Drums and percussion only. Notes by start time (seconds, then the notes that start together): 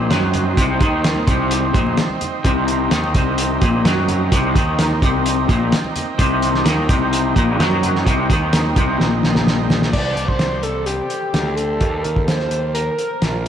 0.11 snare, closed hi-hat
0.22 high conga
0.34 closed hi-hat, low conga
0.57 kick, closed hi-hat
0.81 kick, closed hi-hat, high conga
1.04 snare, closed hi-hat
1.16 high conga
1.27 kick, closed hi-hat, low conga
1.51 closed hi-hat, high conga
1.74 kick, closed hi-hat
1.86 low conga
1.97 snare, closed hi-hat
2.10 high conga
2.21 closed hi-hat, low conga
2.45 kick, closed hi-hat
2.68 closed hi-hat
2.91 snare, closed hi-hat
3.04 high conga
3.15 kick, closed hi-hat, low conga
3.38 closed hi-hat
3.61 kick, closed hi-hat
3.85 snare, closed hi-hat
3.97 high conga
4.08 closed hi-hat, low conga
4.32 kick, closed hi-hat
4.56 kick, closed hi-hat
4.79 snare, closed hi-hat
4.90 high conga
5.02 kick, closed hi-hat
5.26 closed hi-hat
5.49 kick, closed hi-hat
5.72 snare, closed hi-hat
5.84 high conga
5.96 closed hi-hat, low conga
6.19 kick, closed hi-hat
6.42 closed hi-hat
6.55 snare
6.66 snare, closed hi-hat
6.78 high conga
6.89 kick, closed hi-hat, low conga
7.13 closed hi-hat
7.36 kick, closed hi-hat
7.60 snare, closed hi-hat
7.71 high conga
7.83 closed hi-hat, low conga
7.95 snare
8.06 kick, closed hi-hat
8.30 kick, closed hi-hat, high conga
8.53 snare, closed hi-hat
8.66 high conga
8.76 kick, closed hi-hat, low conga
9.00 snare
9.23 snare
9.35 snare, low conga
9.47 snare
9.59 high conga
9.70 snare, low conga
9.82 snare
9.93 kick, crash
10.17 closed hi-hat
10.28 kick
10.39 snare, closed hi-hat
10.63 closed hi-hat
10.86 closed hi-hat
11.10 closed hi-hat
11.34 snare, closed hi-hat
11.57 closed hi-hat
11.81 kick, closed hi-hat
12.04 closed hi-hat
12.16 kick
12.28 snare, closed hi-hat
12.39 snare
12.51 closed hi-hat
12.75 closed hi-hat
12.99 closed hi-hat
13.22 snare, closed hi-hat